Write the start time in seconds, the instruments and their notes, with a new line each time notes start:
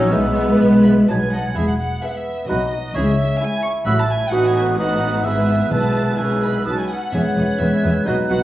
Already playing: french horn section F#3 E4, cello section F#3, bassoon F#3, viola section C#4, violin section C#5, oboe E5
0.10 double bass section B1, cello section G#3, bassoon G#3, french horn section G#3 E4, viola section B3, flute B4, violin section B4 E5, oboe E5
0.36 violin section E5
0.60 double bass section B1, violin section E5, oboe B5
0.84 violin section E5 B5
1.08 double bass section B1, french horn section F#3 D#4, bassoon F#3, violin section D#5 A5, oboe G#5
1.21 violin section G#5
1.32 violin section D#5 F#5, oboe A5
1.46 oboe G#5
1.56 double bass section E1, cello section E2, french horn section G#3 E4, oboe G#4, violin section E5, flute B5
1.68 violin section F#5
1.78 violin section F#5
2.03 viola section B3 E4, bassoon B3, violin section G#4 B4 E5
2.09 violin section F#5
2.16 violin section E5
2.47 double bass section B1, cello section B2, french horn section F#3 F#4, viola section B3 F#4, bassoon D#4, oboe F#4, violin section F#4 B4 D#5, flute B5
2.94 double bass section C#2, cello section C#3, french horn section G#3 E4, bassoon C#4, oboe G#4, violin section E5, flute C#6
3.40 viola section G#3 C#4, violin section E4 E5 G#5, bassoon E4
3.63 violin section C#6
3.86 double bass section A1, cello section A2, french horn section F#3 E4, viola section A3 E4, bassoon E4, oboe F#4, violin section F#4 C#5 B5, flute E6
3.99 violin section A5
4.09 violin section G#5
4.32 double bass section A1, cello section A2, viola section B3 D#4, french horn section B3 D#4, bassoon F#4, violin section F#4 B4 F#5, oboe B4, flute D#6
4.44 violin section G#5
4.55 violin section G#5
4.78 viola section B3 D#4, french horn section B3 D#4, bassoon D#4, violin section F#4 B4 F#5, oboe B4, flute D#6
5.24 double bass section G#1, cello section G#2, viola section B3 E4, french horn section B3 E4, bassoon E4, violin section G#4 B4 E5, oboe B4, flute E6
5.69 double bass section B1, cello section B2, timpani B2, french horn section G#3 E4, viola section B3 E4, bassoon B3, violin section G#4 B4 A5, oboe B4, flute E6
6.17 french horn section G#3 E4, viola section C#4, violin section G#4 B4 G#5, oboe B4, flute E6
6.32 viola section D#4
6.42 viola section D#4, violin section B5
6.65 double bass section B1, cello section B2, french horn section F#3 D#4, viola section C#4, violin section F#4 B4 A5, oboe B4, flute D#6
6.78 violin section G#5
6.89 violin section F#5
7.12 double bass section E1, cello section E2, french horn section G#3 B3, viola section B3 E4, bassoon C#4, violin section G#4 B4 E5, oboe B4, flute G#6
7.25 violin section F#5
7.36 double bass section E1, cello section E2, viola section B3 E4, violin section G#4 B4 F#5
7.59 double bass section E1, cello section E2, french horn section G#3 B3, viola section B3 E4, violin section G#4 B4 E5
7.83 double bass section E1, cello section E2, viola section B3 E4, violin section G#4 B4
8.06 double bass section B1, cello section B2, french horn section F#3 B3, viola section B3 F#4, bassoon D#4, violin section F#4 B4 D#5, flute F#6
8.29 double bass section B1, cello section B2, viola section B3 F#4, violin section F#4 B4 F#5